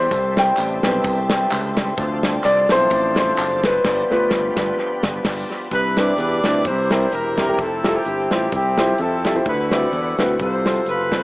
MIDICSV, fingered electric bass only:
0, 0, Header, 1, 2, 480
1, 0, Start_track
1, 0, Key_signature, 0, "major"
1, 0, Tempo, 467290
1, 115, Time_signature, 4, 2, 24, 8
1, 11535, End_track
2, 0, Start_track
2, 0, Title_t, "Fingered electric bass"
2, 0, Program_c, 0, 33
2, 119, Note_on_c, 0, 36, 105
2, 526, Note_off_c, 0, 36, 0
2, 596, Note_on_c, 0, 33, 89
2, 821, Note_off_c, 0, 33, 0
2, 860, Note_on_c, 0, 35, 90
2, 1043, Note_off_c, 0, 35, 0
2, 1071, Note_on_c, 0, 36, 93
2, 1481, Note_off_c, 0, 36, 0
2, 1563, Note_on_c, 0, 37, 85
2, 1968, Note_off_c, 0, 37, 0
2, 2032, Note_on_c, 0, 38, 90
2, 2441, Note_off_c, 0, 38, 0
2, 2514, Note_on_c, 0, 36, 96
2, 2740, Note_off_c, 0, 36, 0
2, 2780, Note_on_c, 0, 35, 88
2, 2963, Note_off_c, 0, 35, 0
2, 2992, Note_on_c, 0, 33, 97
2, 3401, Note_off_c, 0, 33, 0
2, 3470, Note_on_c, 0, 30, 89
2, 3879, Note_off_c, 0, 30, 0
2, 3953, Note_on_c, 0, 31, 97
2, 4134, Note_off_c, 0, 31, 0
2, 4428, Note_on_c, 0, 31, 102
2, 4610, Note_off_c, 0, 31, 0
2, 4695, Note_on_c, 0, 31, 99
2, 4842, Note_off_c, 0, 31, 0
2, 5175, Note_on_c, 0, 31, 95
2, 5322, Note_off_c, 0, 31, 0
2, 5392, Note_on_c, 0, 31, 94
2, 5572, Note_off_c, 0, 31, 0
2, 5874, Note_on_c, 0, 36, 84
2, 6281, Note_off_c, 0, 36, 0
2, 6347, Note_on_c, 0, 40, 83
2, 6575, Note_off_c, 0, 40, 0
2, 6622, Note_on_c, 0, 38, 80
2, 6832, Note_on_c, 0, 36, 84
2, 6847, Note_off_c, 0, 38, 0
2, 7240, Note_off_c, 0, 36, 0
2, 7320, Note_on_c, 0, 28, 70
2, 7725, Note_off_c, 0, 28, 0
2, 7792, Note_on_c, 0, 29, 79
2, 8201, Note_off_c, 0, 29, 0
2, 8279, Note_on_c, 0, 31, 80
2, 8502, Note_off_c, 0, 31, 0
2, 8548, Note_on_c, 0, 33, 76
2, 8727, Note_off_c, 0, 33, 0
2, 8754, Note_on_c, 0, 36, 78
2, 9163, Note_off_c, 0, 36, 0
2, 9236, Note_on_c, 0, 41, 78
2, 9644, Note_off_c, 0, 41, 0
2, 9716, Note_on_c, 0, 38, 85
2, 10124, Note_off_c, 0, 38, 0
2, 10192, Note_on_c, 0, 40, 83
2, 10419, Note_off_c, 0, 40, 0
2, 10461, Note_on_c, 0, 38, 78
2, 10644, Note_off_c, 0, 38, 0
2, 10680, Note_on_c, 0, 36, 86
2, 11087, Note_off_c, 0, 36, 0
2, 11151, Note_on_c, 0, 30, 68
2, 11535, Note_off_c, 0, 30, 0
2, 11535, End_track
0, 0, End_of_file